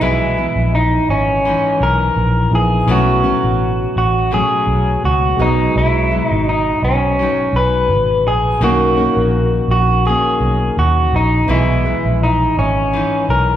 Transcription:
Already playing: upright piano B3
0.00 fingered electric bass B1, nylon-string guitar B2 E3 G#3, upright piano E3 G#4 D#5, clean electric guitar E4
0.38 nylon-string guitar E3 G#3
0.56 fingered electric bass A#1
0.75 clean electric guitar D#4
1.09 fingered electric bass G#1, clean electric guitar C#4
1.45 nylon-string guitar E3 G#3 D#4
1.80 fingered electric bass B1, clean electric guitar A#4
2.16 fingered electric bass A#1
2.50 fingered electric bass A#1, upright piano B3 D#4 E4 G#4
2.55 clean electric guitar G#4
2.86 fingered electric bass B1, nylon-string guitar B2 F#3 A3 C#4, upright piano B3 C#4 E4
2.91 upright piano F#4, clean electric guitar F#4
3.24 nylon-string guitar F#3 A3 C#4
3.43 fingered electric bass A1
3.96 fingered electric bass A1, clean electric guitar F#4
4.31 nylon-string guitar B2 F#3 A3 C#4, clean electric guitar G#4
4.67 fingered electric bass B1
5.04 fingered electric bass C#2, clean electric guitar F#4
5.36 fingered electric bass B1, nylon-string guitar F#3 G#3, upright piano G#3 B3 D#5
5.40 nylon-string guitar B2, clean electric guitar D#4, upright piano F#4
5.75 fingered electric bass B1, clean electric guitar E4
6.11 nylon-string guitar F#3 G#3
6.28 fingered electric bass G#1, clean electric guitar D#4
6.49 clean electric guitar D#4
6.82 fingered electric bass B1, clean electric guitar C#4
7.19 nylon-string guitar F#3 G#3 D#4
7.53 fingered electric bass B1, clean electric guitar B4
7.88 fingered electric bass G#1
8.26 fingered electric bass A#1, clean electric guitar G#4
8.59 fingered electric bass B1, nylon-string guitar B2 D#3 A#3, upright piano A#3 C#4 D#4
8.63 nylon-string guitar C#4, upright piano F#4, clean electric guitar F#4
8.96 nylon-string guitar D#3 A#3 C#4
9.17 fingered electric bass A#1
9.68 fingered electric bass A#1, clean electric guitar F#4
10.05 nylon-string guitar D#3 A#3 C#4, clean electric guitar G#4
10.40 fingered electric bass B1
10.77 fingered electric bass D#2, clean electric guitar F#4
11.13 fingered electric bass A#1, clean electric guitar D#4
11.46 fingered electric bass B1, nylon-string guitar B2 E3 G#3, upright piano E3 B3 D#5
11.51 clean electric guitar E4, upright piano G#4
11.85 nylon-string guitar E3 G#3
12.05 fingered electric bass A#1
12.23 clean electric guitar D#4
12.57 fingered electric bass G#1, clean electric guitar C#4
12.93 nylon-string guitar E3 G#3 D#4
13.29 fingered electric bass B1, clean electric guitar A#4

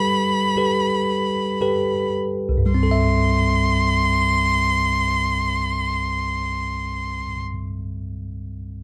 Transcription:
Already playing: tine electric piano G3 G4 A4 B4, violin B5
0.57 tine electric piano G4 A4 B4
1.61 tine electric piano G4 A4 B4
2.49 tine electric piano C2
2.58 tine electric piano G2
2.66 tine electric piano G3
2.71 tine electric piano C4, violin C6
2.83 tine electric piano A4
2.91 tine electric piano E5

